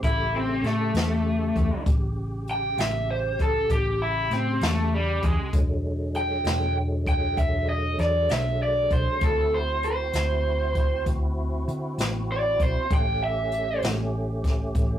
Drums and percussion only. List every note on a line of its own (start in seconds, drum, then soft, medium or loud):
0.03 kick medium
0.03 closed hi-hat medium
0.64 snare soft
0.64 closed hi-hat medium
0.95 snare loud
0.95 closed hi-hat medium
1.56 kick medium
1.56 closed hi-hat medium
1.86 kick loud
1.86 closed hi-hat medium
2.48 closed hi-hat medium
2.78 snare loud
2.78 closed hi-hat medium
3.39 kick medium
3.39 closed hi-hat medium
3.70 kick medium
3.70 closed hi-hat medium
4.31 snare soft
4.31 closed hi-hat medium
4.61 snare loud
4.61 closed hi-hat medium
5.23 kick medium
5.23 closed hi-hat medium
5.53 kick medium
5.53 closed hi-hat medium
6.15 closed hi-hat medium
6.45 snare loud
6.45 closed hi-hat medium
7.07 kick medium
7.07 closed hi-hat medium
7.37 kick medium
7.37 closed hi-hat medium
7.99 snare soft
7.99 closed hi-hat medium
8.29 snare loud
8.29 closed hi-hat medium
8.91 kick medium
8.91 closed hi-hat medium
9.21 kick medium
9.21 closed hi-hat medium
9.83 closed hi-hat medium
10.13 snare loud
10.13 closed hi-hat medium
10.75 kick medium
10.75 closed hi-hat medium
11.06 kick medium
11.06 closed hi-hat medium
11.68 closed hi-hat medium
11.98 snare loud
11.98 closed hi-hat medium
12.60 kick medium
12.60 closed hi-hat medium
12.91 kick loud
12.91 closed hi-hat medium
13.52 closed hi-hat medium
13.82 snare loud
13.82 closed hi-hat medium
14.44 kick medium
14.44 snare soft
14.44 closed hi-hat medium
14.75 kick medium
14.75 closed hi-hat medium